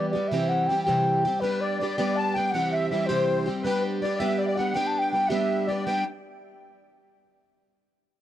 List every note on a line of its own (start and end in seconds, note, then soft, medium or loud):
0.00 0.14 E3 medium
0.00 0.16 G3 medium
0.00 0.13 B3 medium
0.00 0.13 G4 medium
0.10 0.30 G4 soft
0.10 0.30 D5 medium
0.15 0.32 G3 soft
0.15 0.31 B3 soft
0.28 0.69 C3 medium
0.28 0.50 E5 medium
0.32 0.68 E3 medium
0.32 0.70 G3 medium
0.32 0.70 C4 medium
0.32 0.72 G4 medium
0.49 0.69 F#5 loud
0.67 0.86 E3 soft
0.67 0.87 G3 medium
0.67 0.83 G5 medium
0.71 0.87 C4 medium
0.71 0.85 G4 medium
0.84 1.25 G4 medium
0.84 1.42 G5 medium
0.88 1.26 C3 medium
0.88 1.26 E3 medium
0.88 1.28 G3 medium
0.88 1.25 C4 medium
1.25 1.41 G3 soft
1.25 1.43 C4 soft
1.25 1.42 G4 soft
1.40 1.80 G3 medium
1.40 1.80 B3 medium
1.40 1.81 D4 medium
1.40 1.62 B4 medium
1.40 1.63 B4 medium
1.44 1.83 G4 medium
1.61 1.77 D5 medium
1.61 1.78 D5 medium
1.78 1.97 G3 soft
1.78 1.98 B3 medium
1.78 1.95 D5 medium
1.78 1.96 D5 medium
1.82 1.98 D4 medium
1.82 1.97 G4 medium
1.96 2.54 G3 medium
1.96 2.36 B3 medium
1.96 2.36 D4 medium
1.96 2.36 G4 medium
1.96 2.18 D5 medium
1.96 2.19 D5 medium
2.16 2.35 A5 medium
2.16 2.36 A5 medium
2.34 2.54 D4 soft
2.34 2.53 G4 soft
2.34 2.52 G5 medium
2.34 2.53 G5 medium
2.39 2.54 B3 soft
2.51 2.91 C3 medium
2.51 2.90 E3 medium
2.51 2.71 F#5 medium
2.51 2.74 F#5 medium
2.55 2.92 G3 medium
2.55 2.92 C4 medium
2.55 2.94 G4 medium
2.72 2.89 E5 medium
2.89 3.08 E3 soft
2.89 3.09 G3 medium
2.89 3.08 E5 medium
2.89 3.07 E5 medium
2.93 3.08 C4 medium
2.93 3.08 G4 soft
3.06 3.49 G3 medium
3.06 3.47 C4 medium
3.06 3.46 G4 medium
3.06 3.38 C5 medium
3.06 3.48 C5 medium
3.10 3.48 C3 medium
3.10 3.47 E3 medium
3.46 3.63 G3 soft
3.46 3.65 C4 soft
3.46 3.64 G4 medium
3.63 4.02 G3 medium
3.63 4.03 B3 medium
3.63 4.04 D4 medium
3.63 3.82 B4 medium
3.63 3.83 B4 medium
3.67 4.05 G4 medium
4.01 4.19 G3 soft
4.01 4.20 B3 soft
4.01 4.20 D4 medium
4.01 4.19 D5 medium
4.01 4.18 D5 medium
4.05 4.19 G4 medium
4.18 4.60 B3 medium
4.18 4.59 D4 medium
4.18 4.57 G4 medium
4.18 4.40 E5 medium
4.22 4.74 G3 medium
4.38 4.45 D5 medium
4.45 4.57 D5 medium
4.45 4.48 E5 medium
4.56 4.75 D4 soft
4.56 4.75 G4 soft
4.56 4.72 F#5 medium
4.56 4.76 F#5 medium
4.60 4.74 B3 soft
4.73 5.12 G3 medium
4.73 5.14 B3 medium
4.73 5.15 D4 medium
4.73 4.88 G5 medium
4.73 4.87 G5 medium
4.77 5.15 G4 medium
4.87 5.00 A5 medium
4.99 5.11 G5 medium
4.99 5.12 G5 medium
5.12 5.30 G3 medium
5.12 5.30 B3 medium
5.12 5.30 D4 medium
5.12 5.30 G5 medium
5.12 5.24 G5 medium
5.16 5.29 G4 medium
5.25 5.31 F#5 soft
5.29 5.86 G3 medium
5.29 5.71 B3 medium
5.29 5.70 D4 medium
5.29 5.68 G4 medium
5.29 5.69 E5 medium
5.29 5.70 E5 medium
5.67 5.87 D4 soft
5.67 5.86 G4 soft
5.67 5.84 D5 medium
5.67 5.85 D5 medium
5.72 5.86 B3 soft
5.85 6.03 G3 medium
5.85 6.03 B3 medium
5.85 6.04 D4 medium
5.85 6.04 G4 medium
5.85 6.05 G5 medium